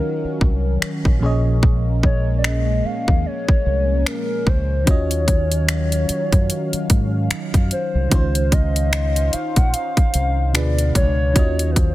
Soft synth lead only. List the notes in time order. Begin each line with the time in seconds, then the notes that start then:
Already playing: A#4
2.04 C#5
2.38 D5
2.45 D#5
2.85 F5
3.26 C#5
4.08 A#4
4.48 C5
4.89 C#5
7.72 C5
8.53 D#5
9.33 F5
9.57 F#5
9.74 F5
10.55 D5
10.96 C#5
11.71 B4
11.77 C5